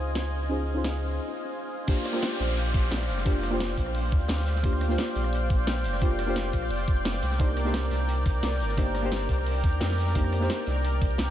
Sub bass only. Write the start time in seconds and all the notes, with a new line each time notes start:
Already playing: C#2
2.40 A#1
2.74 A#1
2.91 A#1
3.09 F1
3.78 A#1
4.12 D2
4.29 D2
5.15 A#1
5.50 A#1
5.67 A#1
5.84 F1
6.53 A#1
6.71 F1
6.88 F1
7.22 C2
7.91 C2
8.26 C2
8.43 C2
8.60 G1
9.29 C2
9.64 D#2
9.81 F2
10.67 C2
11.01 C2
11.19 C2